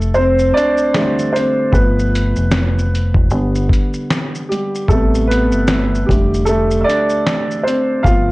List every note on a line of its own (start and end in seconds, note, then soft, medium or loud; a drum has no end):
0.00 0.51 F1 medium
0.00 0.12 A3 medium
0.00 0.17 A4 medium
0.00 shaker soft
0.14 0.53 C4 medium
0.14 0.55 C5 loud
0.14 shaker medium
0.39 shaker soft
0.54 1.30 D4 medium
0.54 1.35 D5 loud
0.54 closed hi-hat medium
0.54 shaker soft
0.77 shaker soft
0.94 1.69 D3 medium
0.94 1.69 G3 soft
0.94 1.70 A3 medium
0.94 snare medium
0.94 shaker medium
1.19 shaker soft
1.33 1.44 C4 medium
1.33 1.42 C5 medium
1.33 closed hi-hat medium
1.33 shaker soft
1.72 2.33 G1 loud
1.72 2.87 F3 medium
1.72 2.88 A3 soft
1.72 2.49 B3 medium
1.72 2.47 B4 medium
1.72 kick loud
1.72 shaker medium
1.99 shaker soft
2.15 closed hi-hat medium
2.15 shaker medium
2.36 3.12 F1 medium
2.36 shaker soft
2.51 snare loud
2.51 shaker medium
2.79 shaker soft
2.95 closed hi-hat medium
2.95 shaker soft
3.15 3.31 E1 medium
3.15 kick medium
3.31 3.68 G1 medium
3.31 4.46 D3 medium
3.31 4.46 G3 soft
3.31 4.46 B3 medium
3.31 shaker medium
3.55 shaker soft
3.70 kick medium
3.70 closed hi-hat medium
3.70 shaker medium
3.94 shaker soft
4.10 snare loud
4.10 shaker medium
4.35 shaker soft
4.49 4.87 G3 medium
4.49 4.90 G4 medium
4.49 closed hi-hat medium
4.49 shaker soft
4.75 shaker soft
4.88 5.53 A1 loud
4.88 6.04 C3 medium
4.88 6.04 G3 soft
4.88 5.27 A3 medium
4.88 5.29 B3 medium
4.88 5.29 A4 medium
4.88 kick loud
4.88 shaker medium
5.15 shaker medium
5.28 6.04 B3 medium
5.28 6.09 B4 medium
5.28 closed hi-hat medium
5.28 shaker medium
5.52 6.03 G1 medium
5.52 shaker soft
5.68 snare loud
5.68 shaker medium
5.95 shaker soft
6.06 6.83 F1 medium
6.06 7.22 D3 soft
6.06 6.45 G3 medium
6.06 6.47 A3 medium
6.06 6.43 G4 medium
6.06 kick medium
6.11 closed hi-hat medium
6.11 shaker soft
6.34 shaker soft
6.45 6.79 A3 medium
6.45 6.81 A4 medium
6.45 shaker medium
6.71 shaker soft
6.81 7.66 D5 loud
6.81 6.86 E5 medium
6.88 7.62 D4 medium
6.88 closed hi-hat medium
6.88 shaker soft
7.10 shaker soft
7.26 snare medium
7.26 shaker medium
7.51 shaker soft
7.63 8.03 C4 medium
7.63 8.05 C5 medium
7.67 closed hi-hat medium
7.67 shaker soft
8.03 8.32 G1 loud
8.03 8.32 F3 medium
8.03 8.32 A3 soft
8.03 8.32 B3 medium
8.03 8.32 F4 medium
8.03 8.32 F5 loud
8.03 kick medium
8.03 shaker medium